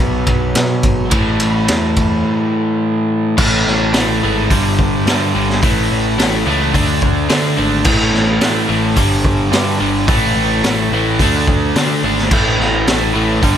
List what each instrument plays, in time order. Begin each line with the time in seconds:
Already playing: overdriven electric guitar B2 F#3 B3
0.00 picked electric bass B1
0.27 kick, ride
0.55 picked electric bass B2, snare, ride
0.83 picked electric bass G#1, kick, ride
1.11 picked electric bass A1, overdriven electric guitar A2 E3 A3, kick, ride
1.40 picked electric bass A1, ride
1.68 picked electric bass E2, snare, ride
1.96 kick, ride
3.37 picked electric bass A1, overdriven electric guitar A2 E3 A3, kick, crash
3.66 picked electric bass A1, snare
3.93 picked electric bass A1, overdriven electric guitar A2 E3 A3, snare, open hi-hat
4.22 picked electric bass G#1, overdriven electric guitar A2 E3 A3
4.50 picked electric bass G1, overdriven electric guitar G2 D3 G3, kick, open hi-hat
4.79 kick
5.06 picked electric bass G2, overdriven electric guitar G2 D3 G3, snare, open hi-hat
5.34 picked electric bass G1, overdriven electric guitar G2 D3 G3
5.50 snare
5.62 picked electric bass A1, overdriven electric guitar A2 E3 A3, kick, open hi-hat
5.91 picked electric bass A1
6.17 picked electric bass A1, overdriven electric guitar A2 E3 A3, snare, open hi-hat
6.46 picked electric bass C#2, overdriven electric guitar A2 E3 A3
6.73 picked electric bass D2, overdriven electric guitar D3 A3 D4, kick, open hi-hat
7.02 kick
7.29 overdriven electric guitar D3 A3 D4, picked electric bass D3, snare, open hi-hat
7.57 picked electric bass G#1, overdriven electric guitar D3 A3 D4
7.84 picked electric bass A1, overdriven electric guitar A2 E3 A3, kick, crash
8.13 picked electric bass A1, snare
8.41 picked electric bass A1, overdriven electric guitar A2 E3 A3, snare, open hi-hat
8.68 picked electric bass A1, overdriven electric guitar A2 E3 A3
8.96 picked electric bass G1, overdriven electric guitar G2 D3 G3, kick, open hi-hat
9.25 kick
9.52 overdriven electric guitar G2 D3 G3, picked electric bass G2, snare, open hi-hat
9.80 picked electric bass G1, overdriven electric guitar G2 D3 G3
10.07 picked electric bass A1, overdriven electric guitar A2 E3 A3, kick, open hi-hat
10.36 picked electric bass A1
10.64 picked electric bass A1, overdriven electric guitar A2 E3 A3, snare, open hi-hat
10.91 picked electric bass A1, overdriven electric guitar A2 E3 A3
11.19 picked electric bass D2, overdriven electric guitar D3 A3 D4, kick, open hi-hat
11.47 kick
11.76 picked electric bass D3, overdriven electric guitar D3 A3 D4, snare, open hi-hat
12.03 picked electric bass G#1, overdriven electric guitar D3 A3 D4
12.18 snare
12.31 picked electric bass A1, overdriven electric guitar A2 E3 A3, kick, crash
12.59 picked electric bass A1, snare
12.87 picked electric bass A1, overdriven electric guitar A2 E3 A3, snare, open hi-hat
13.14 picked electric bass A1, overdriven electric guitar A2 E3 A3
13.42 picked electric bass G1, overdriven electric guitar G2 D3 G3, kick, open hi-hat